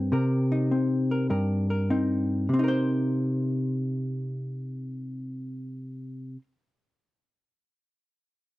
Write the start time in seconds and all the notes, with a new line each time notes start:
Already playing: G2 C4 D#4 A#4 C5
0.12 C3 A#4
0.52 D#4
0.71 C4
1.11 A#4
1.30 G2 A#4
1.70 A#4
1.90 C4 D#4
2.49 C3
2.54 C4
2.59 D#4
2.64 A#4
2.68 C5